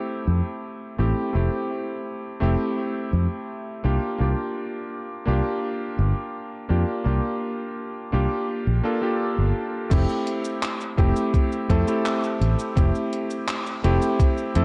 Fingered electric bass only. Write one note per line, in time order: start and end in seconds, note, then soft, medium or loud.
0.27 0.40 F2 medium
0.99 1.12 A1 medium
1.35 1.47 F1 medium
2.42 2.55 F1 medium
3.13 3.26 F2 medium
3.85 3.97 C2 medium
4.20 4.33 C2 medium
5.28 5.40 C2 medium
5.99 6.11 G1 loud
6.70 6.83 F2 medium
7.06 7.19 C2 medium
8.13 8.26 C2 medium
8.67 8.79 A#1 medium
9.38 9.51 G1 medium
9.91 10.04 F1 loud
10.98 11.11 F1 medium
11.70 11.83 F2 loud
12.41 12.54 A1 medium
12.77 12.90 F1 loud
13.84 13.97 F1 medium
14.56 14.65 F2 loud